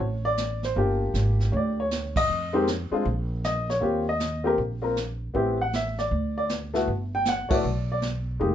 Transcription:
Already playing: upright piano C#5
0.00 upright bass A1, brush sweep, kick
0.25 upright piano D5
0.37 snare, hi-hat pedal
0.63 upright piano C5, snare
0.76 upright bass G1, upright piano A#3 D4 F4 G4, brush sweep, kick
1.14 upright bass G#1, snare, hi-hat pedal
1.40 snare
1.52 upright bass D2, upright piano C#5, brush sweep, kick
1.57 upright piano D5
1.80 upright piano C#5
1.91 snare, hi-hat pedal
2.16 upright piano D#5, kick, crash
2.29 upright bass F2, brush sweep
2.53 upright piano G#3 C4 D#4 G4 A#4
2.67 snare, hi-hat pedal
2.91 upright piano G#3 C4 D4 F4, muted upright bass stroke
3.05 upright bass A#1, brush sweep, kick
3.44 upright piano D#5, snare, hi-hat pedal
3.69 upright piano C#5, snare
3.81 upright bass D#2, upright piano A#3 C4 F4 G4, brush sweep, kick
4.09 upright piano D#5
4.20 snare, hi-hat pedal
4.44 upright piano A#3 C4 F4 G4 A#4
4.58 upright bass A#1, brush sweep, kick
4.82 upright piano A#3 C4 F4 A#4
4.96 snare, hi-hat pedal
5.34 upright bass A1, upright piano B3 C4 E4 G4, brush sweep, kick
5.61 upright piano F#5
5.73 upright piano E5, snare, hi-hat pedal
5.98 upright piano D5, snare
6.11 upright bass D2, brush sweep, kick
6.38 upright piano D5
6.49 snare, hi-hat pedal
6.74 upright piano A3 B3 E4 F#4, snare
6.88 upright bass G1, brush sweep, kick
7.15 upright piano G5
7.25 upright piano F#5, snare, hi-hat pedal
7.49 upright piano A3 B3 E4 F#4 C#5, muted upright bass stroke, kick, crash
7.54 upright piano D5
7.64 upright bass B1, brush sweep
7.92 upright piano D5
8.02 snare, hi-hat pedal
8.40 upright bass F1, upright piano G#3 A#3 D#4 G4, brush sweep, kick

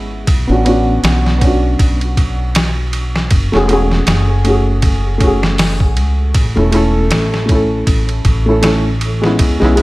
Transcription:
Already playing: upright bass G#1, upright piano G#3 B3 C#4 E4
0.27 upright bass B1, kick, ride
0.47 upright bass A1, upright piano B3 C#4 D4
0.52 upright piano F#4
0.65 upright piano B3 C#4 D4, ride
0.69 upright piano F#4
1.03 upright bass B1, snare, ride
1.26 snare
1.38 upright piano B3 C#4, kick, ride
1.44 upright piano D4 F#4
1.79 upright bass B1, kick, ride
2.01 ride
2.17 kick, ride
2.55 snare, ride
2.93 ride
3.16 snare
3.31 upright bass F#1, kick, ride
3.52 upright bass E1, upright piano A3 C#4 F#4, snare
3.56 upright piano G#4
3.68 upright piano A3 C#4 F#4, ride
3.73 upright piano G#4
3.91 snare
4.07 upright bass F#1, snare, ride
4.44 upright piano A3 C#4 F#4, ride
4.49 upright piano G#4
4.82 kick, ride
5.18 upright piano A3 C#4, kick, ride
5.24 upright piano F#4 G#4
5.43 snare
5.58 snare, open hi-hat
5.80 kick
5.97 upright bass C#2, ride
6.34 upright bass A1, kick, ride
6.55 upright bass E1, upright piano A3 C#4 E4
6.60 upright piano A4
6.71 upright piano A3 C#4 E4, ride
6.76 upright piano A4
7.11 upright bass A1, snare, ride
7.34 snare
7.46 upright piano A3 C#4, kick, ride
7.51 upright piano E4 A4
7.87 upright bass A1, kick, ride
8.09 ride
8.25 upright bass A1, kick, ride
8.46 upright piano A3 C#4 E4
8.50 upright piano A4
8.62 upright piano A3 C#4 E4, snare, ride
8.66 upright piano A4
9.01 ride
9.22 upright piano G#3 B3 C#4, snare
9.26 upright piano E4
9.39 upright bass C#2, kick, ride
9.60 upright bass B1, upright piano G#3 B3 C#4, snare
9.64 upright piano E4
9.76 upright piano G#3 B3 C#4, ride

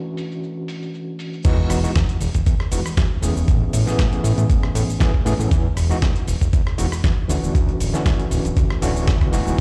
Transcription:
Already playing: tine electric piano E3 A3 C#4 D4 F#4
0.17 open hi-hat, shaker
0.31 shaker
0.43 shaker
0.68 open hi-hat, shaker
0.82 shaker
0.94 shaker
1.19 open hi-hat, shaker
1.33 shaker
1.44 analog synth bass E2, tine electric piano E3 G#3 B3 D#4 F#4, kick, closed hi-hat, crash, shaker
1.70 analog synth bass E1, cross-stick, open hi-hat, shaker
1.83 tine electric piano E3 G#3 B3 D#4 F#4, shaker
1.96 analog synth bass E2, kick, snare, closed hi-hat, shaker
2.09 closed hi-hat
2.21 analog synth bass E1, open hi-hat, shaker
2.34 analog synth bass E1, kick, closed hi-hat, shaker
2.46 analog synth bass E2, kick, closed hi-hat, shaker
2.60 cross-stick
2.71 analog synth bass E1, tine electric piano E3 G#3 B3 D#4 F#4, open hi-hat, shaker
2.86 analog synth bass E2, cross-stick, shaker
2.97 analog synth bass E2, kick, snare, closed hi-hat, shaker
3.21 analog synth bass E1, tine electric piano E3 A3 B3 C#4 G#4, open hi-hat, shaker
3.36 analog synth bass E1, shaker
3.48 analog synth bass A1, kick, closed hi-hat, shaker
3.73 analog synth bass A2, open hi-hat, shaker
3.86 analog synth bass A1, tine electric piano E3 A3 B3 C#4 G#4, snare, shaker
3.99 analog synth bass A1, kick, snare, closed hi-hat, shaker
4.13 closed hi-hat
4.24 analog synth bass A2, open hi-hat, shaker
4.38 analog synth bass A2, closed hi-hat, shaker
4.50 analog synth bass A1, kick, closed hi-hat, shaker
4.63 cross-stick
4.75 analog synth bass A2, open hi-hat, shaker
4.89 analog synth bass A1, shaker
5.00 analog synth bass A1, tine electric piano E3 A3 B3 C#4 G#4, kick, snare, closed hi-hat, shaker
5.14 kick
5.25 analog synth bass A2, tine electric piano E3 A3 B3 C#4 G#4, open hi-hat, shaker
5.39 analog synth bass A2, tine electric piano E3 A3 B3 C#4 A4, shaker
5.51 analog synth bass E2, kick, closed hi-hat, shaker
5.76 analog synth bass E1, cross-stick, open hi-hat, shaker
5.90 tine electric piano E3 G#3 B3 D#4 F#4, shaker
6.02 analog synth bass E2, kick, snare, closed hi-hat, shaker
6.16 closed hi-hat
6.27 analog synth bass E1, open hi-hat, shaker
6.41 analog synth bass E1, kick, closed hi-hat, shaker
6.53 analog synth bass E2, kick, closed hi-hat, shaker
6.67 cross-stick
6.78 analog synth bass E1, tine electric piano E3 G#3 B3 D#4 F#4, open hi-hat, shaker
6.92 analog synth bass E2, cross-stick, shaker
7.04 analog synth bass E2, kick, snare, closed hi-hat, shaker
7.28 analog synth bass D1, tine electric piano E3 A3 C#4 D4 F#4, open hi-hat, shaker
7.42 analog synth bass D1, shaker
7.55 analog synth bass D2, kick, closed hi-hat, shaker
7.69 closed hi-hat
7.80 analog synth bass D1, open hi-hat, shaker
7.93 analog synth bass D2, tine electric piano E3 A3 C#4 D4 F#4, snare, closed hi-hat, shaker
8.06 analog synth bass D2, kick, snare, closed hi-hat, shaker
8.20 closed hi-hat
8.31 analog synth bass D1, open hi-hat, shaker
8.45 analog synth bass D1, closed hi-hat, shaker
8.57 analog synth bass D2, kick, closed hi-hat, shaker
8.70 cross-stick
8.82 analog synth bass D1, tine electric piano E3 A3 C#4 D4 F#4, open hi-hat, shaker
8.96 shaker
9.07 analog synth bass D2, kick, snare, closed hi-hat, shaker
9.21 kick, cross-stick, closed hi-hat
9.32 analog synth bass D1, tine electric piano E3 G#3 B3 D#4 F#4, open hi-hat, shaker
9.47 analog synth bass D1, shaker

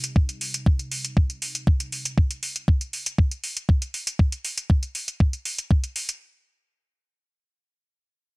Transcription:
Already playing: analog synth pad C3 G3 D#4
0.04 closed hi-hat
0.16 kick
0.29 closed hi-hat
0.41 open hi-hat
0.54 closed hi-hat
0.66 kick
0.79 closed hi-hat
0.92 open hi-hat
1.05 closed hi-hat
1.17 kick
1.30 closed hi-hat
1.42 open hi-hat
1.55 closed hi-hat
1.67 kick
1.80 closed hi-hat
1.92 open hi-hat
2.05 closed hi-hat
2.18 kick
2.31 closed hi-hat
2.43 open hi-hat
2.56 closed hi-hat
2.68 kick
2.81 closed hi-hat
2.93 open hi-hat
3.06 closed hi-hat
3.18 kick
3.31 closed hi-hat
3.44 open hi-hat
3.57 closed hi-hat
3.69 kick
3.82 closed hi-hat
3.94 open hi-hat
4.07 closed hi-hat
4.19 kick
4.32 closed hi-hat
4.45 open hi-hat
4.58 closed hi-hat
4.70 kick
4.83 closed hi-hat
4.95 open hi-hat
5.08 closed hi-hat
5.20 kick
5.33 closed hi-hat
5.45 open hi-hat
5.58 closed hi-hat
5.71 kick
5.84 closed hi-hat
5.96 open hi-hat
6.09 closed hi-hat

